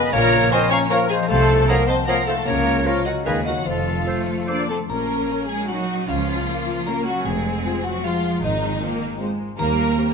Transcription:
Already playing: harp F#2 F#3 A#3 F#4 A#4 C#5 F#5 C#6, french horn section B3, violin section B4 B5, flute D#5, xylophone G#5
0.05 harp C#3
0.13 double bass section A#1, cello section A#2, harp A#2, french horn section A#3, viola section A#4, violin section A#4 A#5, flute C#5, xylophone F5
0.24 harp F3
0.34 harp F4
0.43 harp C#5
0.51 bassoon F3, french horn section C4, clarinet A#4, violin section C5 C6, viola section C5, oboe C#5, flute D#5, xylophone G#5
0.70 french horn section C#4, viola section C#5, violin section C#5 C#6, flute F5, xylophone A#5, harp C#6
0.82 harp F5
0.89 bassoon F3, french horn section A#3, viola section A#4, violin section A#4 A#5, harp A#4, clarinet A#4, oboe C#5, flute C#5, xylophone F5
1.09 french horn section G#3, harp A#3, viola section G#4, violin section G#4 G#5, flute C5, xylophone F5
1.20 harp F3, violin section A#5
1.28 double bass section C2, cello section C3, harp C3, french horn section A3, viola section A4, violin section A4 A5, flute C5, xylophone F5
1.40 harp C4
1.50 harp F4
1.68 bassoon F3, french horn section A#3, violin section A#4 A#5, viola section A#4, clarinet C5, flute C#5, oboe D#5, xylophone F#5
1.79 harp F5
1.87 french horn section C4, viola section C5, violin section C5 C6, flute D#5, xylophone A5
1.99 harp F5
2.06 bassoon F3, french horn section A#3, viola section A#4, violin section A#4 A#5, clarinet C5, flute C#5, oboe D#5, xylophone F#5
2.18 harp C5
2.26 french horn section A3, harp D#4, viola section A4, violin section A4 A5, flute C5, xylophone F5
2.38 harp C4
2.45 double bass section C#2, cello section C#3, harp C#3, french horn section A#3, viola section A#4, violin section A#4 A#5, flute C#5, xylophone F5
2.58 harp A#3
2.67 harp F4
2.77 harp A#4
2.83 french horn section F3, bassoon F3, viola section F4, violin section F4 F5, clarinet A#4, flute A#4, xylophone C#5
2.87 harp C#5, oboe C#5
2.97 harp F5
3.04 french horn section F#3, viola section F#4, violin section F#4 F#5, flute A#4, xylophone D#5, harp A#5
3.17 harp F5
3.25 double bass section D#2, cello section D#3, bassoon D#3, harp D#3, french horn section G#3, violin section G#4 G#5, viola section G#4, clarinet B4, flute B4, oboe D#5, xylophone F5
3.37 harp B3
3.45 french horn section F#3, violin section F#4 F#5, viola section F#4, flute A#4, harp B4, xylophone D#5
3.58 harp D#4
3.65 double bass section F1, cello section F2, french horn section F3, harp F3, violin section F4 F5, viola section F4, flute A4, xylophone C5
3.78 harp A3
3.88 harp C5
3.98 harp A4
4.07 bassoon F3, cello section A3, clarinet A4, oboe C5, harp C5
4.19 harp C6
4.28 harp A5
4.38 harp C6
4.47 bassoon F3, cello section A#3 D4, clarinet A4, oboe C5, harp C5, violin section D5, xylophone D6
4.59 harp A4
4.69 cello section A3 C4, harp C4, violin section A4, xylophone A5
4.79 harp A3
4.88 double bass section A#1, harp A#2, cello section A#3, viola section C#4, violin section A#4, xylophone A#5
5.09 harp A#3
5.29 french horn section A#3 C#4, harp C#4, violin section C#5
5.47 cello section G#3, violin section G#4, harp A#4, xylophone G#5
5.67 cello section F#3, french horn section A#3 C#4, harp C#4, viola section D#4, violin section F#4 C#5, xylophone F#5
5.89 harp A#4
6.08 double bass section C#2, harp C#3, cello section F3, viola section C#4, violin section F4, xylophone F5
6.29 harp A#3
6.47 french horn section A#3 F4, viola section A#3, harp F4, violin section C#5
6.69 harp A#4
6.86 cello section A#3, french horn section A#3 F4, viola section C#4, harp F4, violin section A#4 C#5, xylophone A#5
7.06 cello section F#3, violin section F#4, xylophone F#5
7.25 double bass section F1, harp F2, cello section G#3, viola section C4, violin section G#4, xylophone G#5
7.47 harp G#3
7.65 french horn section C4 F4, harp F4, violin section C5
7.83 cello section F#3, violin section F#4, harp C5, xylophone F#5
8.03 cello section F3, viola section G#3, french horn section C4 F4, violin section F4 C5, harp G#4, xylophone F5
8.24 harp C5
8.41 double bass section G#1, harp G#2, cello section D#3, violin section D#4, xylophone D#5
8.62 harp G#3
8.80 viola section A#3, french horn section C4 F4, harp F4, violin section C5
9.01 harp C5
9.18 viola section G#3, french horn section C4 F4, harp G#4, violin section C5
9.39 harp C5
9.58 double bass section D#2, harp D#3, viola section G3, cello section A#3, violin section A#4, xylophone A#5
9.79 harp G3
9.96 viola section A#3, french horn section C4 G4, harp G4, violin section C5

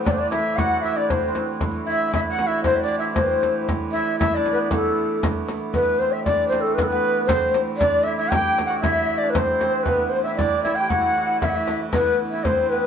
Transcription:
Already playing: hurdy-gurdy A2 E3, hammered dulcimer A3 C4 E4
0.05 hammered dulcimer D4, shakuhachi D5, recorder D5, frame drum
0.12 shakuhachi C5
0.17 hammered dulcimer D4, shakuhachi D5, recorder D5
0.31 hammered dulcimer E4, shakuhachi E5, recorder E5, frame drum
0.56 hammered dulcimer F#4, shakuhachi F#5, recorder F#5, frame drum
0.81 hammered dulcimer E4, recorder E5, shakuhachi E5, frame drum
0.96 hammered dulcimer D4, recorder D5, shakuhachi D5
1.09 hammered dulcimer C4, recorder C5, shakuhachi C5, frame drum
1.18 hammered dulcimer C4
1.28 hammered dulcimer C4
1.35 frame drum
1.59 hurdy-gurdy A2 E3, frame drum
1.86 hammered dulcimer E4, recorder E5, shakuhachi E5, frame drum
2.11 hammered dulcimer E4, recorder E5, shakuhachi E5, frame drum
2.29 recorder F#5, shakuhachi F#5
2.39 hammered dulcimer F#4, frame drum
2.47 hammered dulcimer E4, shakuhachi E5, recorder E5
2.64 hammered dulcimer C4, recorder C5, shakuhachi C5, frame drum
2.76 recorder E5
2.80 hammered dulcimer D4, recorder D5, shakuhachi D5
2.98 hammered dulcimer E4, recorder E5, shakuhachi E5
3.15 hammered dulcimer C4, shakuhachi C5, recorder C5, frame drum
3.23 recorder B4
3.31 recorder C5
3.43 frame drum
3.69 frame drum
3.92 hammered dulcimer E4, shakuhachi E5, recorder E5, frame drum
4.19 hammered dulcimer E4, recorder E5, shakuhachi E5, frame drum
4.34 hammered dulcimer D4, recorder D5, shakuhachi D5
4.46 frame drum
4.53 hammered dulcimer B3, shakuhachi B4
4.70 hammered dulcimer A3, recorder A4, shakuhachi A4, frame drum
5.23 frame drum
5.49 frame drum
5.73 hurdy-gurdy A2 E3, hammered dulcimer B3, shakuhachi B4, recorder B4, frame drum
5.99 hammered dulcimer C4, shakuhachi C5, recorder C5, frame drum
6.12 shakuhachi E5, recorder E5
6.24 hammered dulcimer D4, shakuhachi D5, recorder D5, frame drum
6.48 shakuhachi C5
6.52 hammered dulcimer C4, frame drum
6.61 shakuhachi A4, recorder A4
6.66 hammered dulcimer A3
6.75 hammered dulcimer B3, shakuhachi B4, recorder B4, frame drum
6.83 shakuhachi A4
6.88 shakuhachi B4, recorder B4
6.92 hammered dulcimer B3
7.26 hammered dulcimer C4, shakuhachi C5, recorder C5, frame drum
7.54 frame drum
7.77 hammered dulcimer D4, shakuhachi D5, recorder D5, frame drum
8.03 hammered dulcimer E4, shakuhachi E5, recorder E5, frame drum
8.17 hammered dulcimer E4, shakuhachi E5, recorder E5
8.30 hammered dulcimer G4, shakuhachi G5, recorder G5, frame drum
8.58 frame drum
8.66 hammered dulcimer F#4, shakuhachi F#5
8.80 hammered dulcimer E4, shakuhachi E5, recorder E5, frame drum
9.09 frame drum
9.18 shakuhachi D5
9.24 hammered dulcimer D4
9.30 shakuhachi C5, recorder C5
9.35 hammered dulcimer C4, frame drum
9.61 hammered dulcimer C4, frame drum
9.83 hurdy-gurdy A2 E3, shakuhachi B4, recorder B4, frame drum
9.88 hammered dulcimer B3
10.09 shakuhachi C5, recorder C5, frame drum
10.13 hammered dulcimer C4
10.23 shakuhachi E5, recorder E5
10.27 hammered dulcimer E4
10.36 hammered dulcimer D4, shakuhachi D5, recorder D5, frame drum
10.63 hammered dulcimer E4, shakuhachi E5, frame drum
10.75 shakuhachi G5, recorder G5
10.80 hammered dulcimer G4
10.89 hammered dulcimer F#4, shakuhachi F#5, recorder F#5, frame drum
11.16 hammered dulcimer F#4, frame drum
11.40 hammered dulcimer E4, recorder E5, shakuhachi F#5, frame drum
11.44 shakuhachi E5
11.49 recorder F#5
11.55 recorder E5
11.68 frame drum
11.93 hammered dulcimer B3, shakuhachi B4, recorder B4, frame drum
12.19 frame drum
12.31 hammered dulcimer E4, shakuhachi E5
12.44 hammered dulcimer C4, shakuhachi C5, recorder C5, frame drum
12.65 hammered dulcimer C4
12.70 hammered dulcimer B3, shakuhachi B4, recorder B4

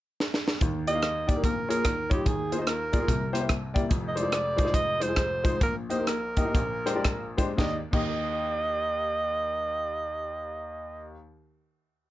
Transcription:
0.20 snare
0.34 snare
0.48 snare
0.61 grand piano D#2 D#3, kick, closed hi-hat
0.87 grand piano A#3 D#4 G4 D5, alto saxophone D#5, closed hi-hat
0.95 grand piano A#3 D#4 G4 F5
1.02 cross-stick, closed hi-hat
1.27 grand piano A#3 D#4 G4 D5, alto saxophone D5, kick, closed hi-hat
1.36 grand piano A#3 D#4 G4 A#4
1.43 grand piano A#1 A#2, alto saxophone A#4, kick, closed hi-hat
1.68 grand piano A#3 F4 G#4 C#5, alto saxophone A#4, cross-stick, closed hi-hat
1.77 grand piano A#3 F4 G#4 A#4
1.84 grand piano D#2 D#3, kick, cross-stick, closed hi-hat
2.10 grand piano G3 D#4 F4 C#5, alto saxophone G4, kick, closed hi-hat
2.25 grand piano D#2 D#3, alto saxophone G#4, kick, closed hi-hat
2.52 grand piano A#3 F4 G#4 C5, closed hi-hat
2.58 grand piano A#3 F4 G#4 D#5, alto saxophone C5
2.67 alto saxophone A#4, cross-stick, closed hi-hat
2.92 grand piano A#3 F4 G#4 D5, kick, closed hi-hat
3.00 grand piano A#3 F4 G#4 A#4
3.08 grand piano C2 C3, kick, closed hi-hat
3.33 grand piano A#3 E4 G4 C5, cross-stick, closed hi-hat
3.41 grand piano A#3 E4 G4 C5
3.49 kick, cross-stick, closed hi-hat
3.74 grand piano A#3 E4 G4 D5, kick, closed hi-hat
3.89 grand piano F1 F2, kick, closed hi-hat
4.08 alto saxophone D#5
4.15 grand piano G#3 D#4 F4 C5, alto saxophone D5, closed hi-hat
4.22 grand piano G#3 D#4 F4 C5
4.32 cross-stick, closed hi-hat
4.56 grand piano G#3 D#4 F4 C5, kick, closed hi-hat
4.64 grand piano G#3 D#4 F4 C5, cross-stick
4.74 alto saxophone D#5, kick, closed hi-hat
5.00 grand piano G#3 D#4 F4 C5, alto saxophone C5, closed hi-hat
5.08 grand piano G#3 D#4 F4 G#4
5.16 kick, cross-stick, closed hi-hat
5.44 grand piano G#3 D#4 F4 C5, kick, closed hi-hat
5.61 grand piano A#1 A#2, alto saxophone A#4, kick, closed hi-hat
5.89 grand piano A#3 D#4 G4 D#5, alto saxophone C5, closed hi-hat
5.98 grand piano A#3 D#4 G4 A#4
6.07 alto saxophone A#4, cross-stick, closed hi-hat
6.37 grand piano A#3 D#4 G4 D#5, kick, closed hi-hat
6.45 grand piano A#3 D#4 G4 D#5
6.55 grand piano A#1 A#2, kick, closed hi-hat
6.86 grand piano G#3 D4 G4 C5, cross-stick, closed hi-hat
6.95 grand piano G#3 D4 G4 D5
7.04 kick, cross-stick, closed hi-hat
7.37 grand piano G#3 D4 G4 C5, kick, closed hi-hat
7.55 grand piano D#2 A#3 D#4 G4 D5, alto saxophone D#5, kick, snare
7.91 grand piano D#2 A#3 D#4 G4 D#5, alto saxophone D#5, kick, crash

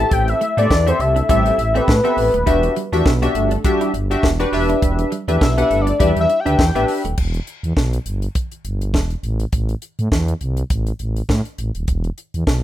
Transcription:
Already playing: analog polysynth C4 G4 A4 E5, analog synth lead A5
0.11 fm bass A1, analog synth lead G5, kick, closed hi-hat
0.28 analog synth lead E5, muted clean electric guitar stroke, closed hi-hat
0.41 clean electric guitar A3, closed hi-hat
0.57 fm bass A2, clean electric guitar B3, analog polysynth C4 G4 A4 C5 E5, analog synth lead D5, closed hi-hat
0.71 fm bass E2, analog polysynth B3 B4, kick, snare
0.87 clean electric guitar C4, analog polysynth C4 G4 A4 E5, analog synth lead C5, closed hi-hat
0.99 fm bass C2, analog polysynth A3 A4, analog synth lead E5, muted clean electric guitar stroke, closed hi-hat
1.16 clean electric guitar D4, closed hi-hat
1.29 fm bass A1, analog polysynth G3 C4 G4 A4 E5, clean electric guitar E4, analog synth lead E5, kick, closed hi-hat
1.46 analog synth lead E5, closed hi-hat
1.58 fm bass A1, muted clean electric guitar stroke, closed hi-hat
1.74 analog polysynth C4 G4 A4 E5, clean electric guitar C4, analog synth lead B4, closed hi-hat
1.88 fm bass A2, kick, snare
2.04 clean electric guitar B3, analog polysynth C4 G4 A4 E5, closed hi-hat
2.17 fm bass A1, muted clean electric guitar stroke, open hi-hat
2.34 fm bass D#1, clean electric guitar A3, closed hi-hat
2.46 fm bass E1, analog polysynth D4 F#4 G4 E5, kick, closed hi-hat
2.63 muted clean electric guitar stroke, closed hi-hat
2.76 clean electric guitar G3, closed hi-hat
2.92 fm bass E2, clean electric guitar A3, analog polysynth D4 F#4 G4 D5 E5, closed hi-hat
3.06 fm bass B1, analog polysynth B3 B4, kick, snare
3.22 clean electric guitar B3, analog polysynth D4 F#4 G4 E5, closed hi-hat
3.35 fm bass G1, analog polysynth A3 A4, muted clean electric guitar stroke, closed hi-hat
3.51 clean electric guitar D4, closed hi-hat
3.64 analog polysynth G3 D4 F#4 G4 E5, muted clean electric guitar stroke, kick, closed hi-hat
3.81 clean electric guitar E4, closed hi-hat
3.94 fm bass G1, clean electric guitar D4, closed hi-hat
4.11 analog polysynth D4 F#4 G4 E5, closed hi-hat
4.23 fm bass E1, clean electric guitar B3, kick, snare
4.39 analog polysynth D4 F#4 G4 B4, closed hi-hat
4.52 fm bass E1, analog polysynth D4 G4 B4 E5, muted clean electric guitar stroke, open hi-hat
4.69 clean electric guitar E4, closed hi-hat
4.82 fm bass E1, kick, closed hi-hat
4.99 muted clean electric guitar stroke, closed hi-hat
5.12 clean electric guitar G3, closed hi-hat
5.28 fm bass E2, clean electric guitar A3, analog polysynth D4 G4 B4 D5 E5, closed hi-hat
5.41 fm bass B1, analog polysynth B3 B4, analog synth lead E5, kick, snare
5.58 clean electric guitar B3, analog polysynth D4 G4 B4 F#5, closed hi-hat
5.62 analog synth lead E5
5.71 fm bass G1, analog polysynth A3 A4, muted clean electric guitar stroke, closed hi-hat
5.81 analog synth lead D5
5.87 clean electric guitar D4, closed hi-hat
5.99 fm bass E2, analog polysynth G3 D4 G4 B4 E5, clean electric guitar E4, analog synth lead D5, kick, closed hi-hat
6.16 fm bass E2, closed hi-hat
6.21 analog synth lead E5
6.29 muted clean electric guitar stroke, closed hi-hat
6.40 analog synth lead G5
6.45 fm bass D2, analog polysynth D4 G4 B4 E5, clean electric guitar D4, closed hi-hat
6.59 fm bass E2, kick, snare
6.75 fm bass A1, clean electric guitar B3, analog polysynth D4 G4 B4 E5, closed hi-hat
6.88 muted clean electric guitar stroke, open hi-hat
7.05 fm bass D#1, clean electric guitar A3, closed hi-hat
7.18 fm bass E1, kick, crash
7.34 closed hi-hat
7.47 closed hi-hat
7.63 fm bass E2, closed hi-hat
7.77 fm bass B1, kick, snare
7.93 closed hi-hat
8.06 fm bass G1, closed hi-hat
8.22 closed hi-hat
8.35 kick, closed hi-hat
8.52 closed hi-hat
8.65 fm bass G1, closed hi-hat
8.81 closed hi-hat
8.94 fm bass E1, kick, snare
9.10 closed hi-hat
9.23 fm bass A1, closed hi-hat
9.40 closed hi-hat
9.52 fm bass A1, kick, closed hi-hat
9.69 closed hi-hat
9.82 closed hi-hat
9.99 fm bass A2, closed hi-hat
10.12 fm bass E2, kick, snare
10.28 closed hi-hat
10.41 fm bass C2, closed hi-hat
10.57 closed hi-hat
10.70 fm bass A1, kick, closed hi-hat
10.87 closed hi-hat
10.99 fm bass A1, closed hi-hat
11.16 closed hi-hat
11.29 fm bass A2, kick, snare
11.45 closed hi-hat
11.58 fm bass A1, closed hi-hat
11.75 fm bass D#1, closed hi-hat
11.88 fm bass E1, kick, closed hi-hat
12.04 closed hi-hat
12.18 closed hi-hat
12.34 fm bass E2, closed hi-hat
12.47 fm bass B1, kick, snare

